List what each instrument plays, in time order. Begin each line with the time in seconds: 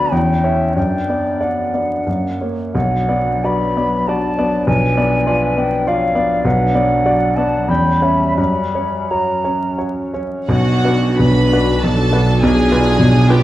Already playing: grand piano D2 D4 F#4 B4, clarinet D5, flute B5
0.11 grand piano E2, french horn section C#4 E4, clarinet C#5, flute G5
0.44 grand piano C#4 C#5, clarinet E5
0.75 grand piano F#2, french horn section B3 D4, clarinet D5, flute G5
1.09 grand piano B3 D5
1.40 grand piano D4 D5, flute F#5
1.74 grand piano B3 D5
2.07 grand piano F#2, french horn section A#3 C#4
2.41 grand piano A#3 C#5
2.74 grand piano B1, french horn section F#3 D4, flute F#5
3.09 grand piano B3 D5
3.44 grand piano F#4 D5, clarinet B4, flute B5
3.77 grand piano B3 D5
4.08 grand piano F#4 D5, clarinet D5, flute A5
4.36 grand piano B3 D5, clarinet C#5
4.66 grand piano B1, french horn section F3, clarinet B4, flute G#5
4.97 grand piano B3 D5
5.27 grand piano F4 D5, clarinet B4
5.57 grand piano B3 D5, flute G5
5.87 grand piano F4 D5, clarinet C#5, flute F5
6.15 grand piano B3 D5, clarinet D5
6.45 grand piano B1, french horn section F#3 D4, clarinet B4, flute F#5
6.75 grand piano B3 D5, clarinet C#5
7.06 grand piano F#4 D5, clarinet D5
7.36 grand piano B3 D5, clarinet F#5, flute A5
7.68 grand piano E2, french horn section G3 C#4, clarinet G5, flute B5
8.02 grand piano C#4 C#5, clarinet E5
8.36 grand piano F#2, clarinet C#5, flute B5
8.75 grand piano C#4 C#5
9.09 french horn section F#3, grand piano F#4 C#5, flute A#5
9.44 grand piano C#4 C#5
9.78 grand piano F#4 C#5
10.14 grand piano C#4 C#5
10.48 grand piano B1 B2, tuba B1, double bass section B1, cello section B2, viola section D4 F#4, violin section F#4 F#5
10.84 grand piano D4 F#4 B4
11.19 grand piano B1 B2, violin section B4 B5
11.52 grand piano D4 F#4 B4
11.82 grand piano B1 B2, violin section A4 A5
12.12 grand piano D4 F#4 B4
12.41 grand piano B1 B2, viola section F4, violin section G#4 G#5
12.71 grand piano D4 F4 B4
12.99 grand piano B1 B2
13.29 grand piano D4 F4 B4, violin section G4 G5